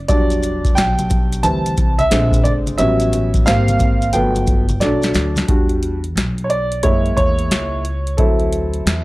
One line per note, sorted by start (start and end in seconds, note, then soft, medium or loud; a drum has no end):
0.08 0.73 E1 loud
0.08 1.40 F#3 medium
0.08 1.40 G3 medium
0.08 1.41 D4 medium
0.08 0.78 D5 loud
0.08 kick loud
0.08 closed hi-hat medium
0.08 maracas medium
0.30 closed hi-hat medium
0.30 maracas soft
0.43 closed hi-hat medium
0.43 maracas soft
0.65 kick loud
0.65 closed hi-hat soft
0.65 maracas soft
0.75 1.41 B1 medium
0.75 1.45 G5 loud
0.75 snare loud
0.75 closed hi-hat loud
0.75 maracas medium
0.99 closed hi-hat medium
0.99 high conga medium
0.99 maracas soft
1.10 kick medium
1.10 closed hi-hat medium
1.10 low conga medium
1.10 maracas soft
1.33 closed hi-hat medium
1.33 maracas medium
1.43 1.76 D2 medium
1.43 1.93 E3 medium
1.43 1.93 G3 soft
1.43 1.93 C4 medium
1.43 2.01 A5 medium
1.43 closed hi-hat medium
1.43 maracas medium
1.66 closed hi-hat soft
1.66 high conga soft
1.66 maracas soft
1.77 2.10 C2 medium
1.77 kick medium
1.77 closed hi-hat medium
1.77 maracas soft
1.99 2.41 E5 loud
1.99 closed hi-hat soft
1.99 high conga medium
1.99 maracas soft
2.11 2.44 A#1 loud
2.11 2.75 D3 medium
2.11 2.76 G#3 medium
2.11 2.76 C4 medium
2.11 snare loud
2.11 closed hi-hat medium
2.11 maracas medium
2.32 kick medium
2.32 closed hi-hat medium
2.32 maracas soft
2.44 2.77 G1 medium
2.44 2.51 D5 medium
2.44 closed hi-hat medium
2.44 high conga soft
2.44 low conga medium
2.44 maracas soft
2.67 closed hi-hat medium
2.67 high conga medium
2.67 maracas soft
2.78 3.43 A1 medium
2.78 3.43 F#3 medium
2.78 3.43 G3 medium
2.78 3.43 B3 medium
2.78 3.43 C#4 medium
2.78 3.48 E5 loud
2.78 closed hi-hat medium
2.78 maracas medium
3.00 closed hi-hat soft
3.00 maracas soft
3.13 closed hi-hat medium
3.13 low conga medium
3.13 maracas soft
3.34 kick medium
3.34 closed hi-hat soft
3.34 maracas medium
3.46 4.11 G#1 loud
3.46 4.10 G3 medium
3.46 4.11 A#3 medium
3.46 4.11 C4 medium
3.46 4.16 F5 medium
3.46 snare loud
3.46 closed hi-hat medium
3.46 maracas medium
3.68 closed hi-hat medium
3.68 high conga medium
3.68 maracas soft
3.79 kick medium
3.79 closed hi-hat medium
3.79 low conga medium
3.79 maracas soft
4.02 closed hi-hat medium
4.02 maracas soft
4.13 4.78 G1 medium
4.13 4.62 F#3 soft
4.13 4.63 A3 soft
4.13 4.63 B3 medium
4.13 4.83 G5 medium
4.13 closed hi-hat loud
4.13 maracas medium
4.35 closed hi-hat soft
4.35 high conga soft
4.35 maracas soft
4.47 kick medium
4.47 closed hi-hat medium
4.47 maracas soft
4.69 closed hi-hat medium
4.69 high conga medium
4.69 maracas soft
4.80 5.13 B1 loud
4.80 5.45 F#3 medium
4.80 5.46 A3 medium
4.80 5.46 D4 medium
4.80 5.32 D5 medium
4.80 snare medium
4.80 closed hi-hat medium
4.80 maracas soft
5.02 snare medium
5.02 closed hi-hat medium
5.02 maracas medium
5.14 5.47 D2 medium
5.14 snare medium
5.14 closed hi-hat medium
5.14 high conga soft
5.14 low conga medium
5.14 maracas soft
5.36 snare medium
5.36 closed hi-hat medium
5.36 high conga medium
5.36 maracas soft
5.48 6.13 E2 medium
5.48 5.97 G3 medium
5.48 5.98 D4 medium
5.48 5.98 F#4 medium
5.48 kick loud
5.48 closed hi-hat medium
5.69 closed hi-hat soft
5.83 closed hi-hat medium
6.04 closed hi-hat soft
6.16 6.80 B1 medium
6.16 snare medium
6.16 closed hi-hat medium
6.38 closed hi-hat soft
6.44 6.49 C#5 medium
6.50 6.81 D5 medium
6.50 closed hi-hat medium
6.72 closed hi-hat medium
6.83 7.16 F#2 medium
6.83 7.80 G#3 soft
6.83 7.81 A#3 soft
6.83 7.81 E4 medium
6.83 7.15 C#5 medium
6.83 kick medium
6.83 closed hi-hat medium
7.06 closed hi-hat soft
7.17 7.49 E2 medium
7.17 8.21 C#5 loud
7.17 kick medium
7.17 closed hi-hat medium
7.39 closed hi-hat soft
7.51 8.15 C#2 medium
7.51 snare loud
7.51 closed hi-hat medium
7.85 closed hi-hat medium
8.07 closed hi-hat soft
8.17 8.82 D2 loud
8.17 9.04 F#3 medium
8.17 9.04 C4 medium
8.17 9.04 E4 medium
8.17 9.04 A4 medium
8.17 kick loud
8.17 closed hi-hat medium
8.40 closed hi-hat soft
8.53 closed hi-hat medium
8.74 closed hi-hat soft
8.86 9.04 E2 medium
8.86 snare loud
8.86 closed hi-hat medium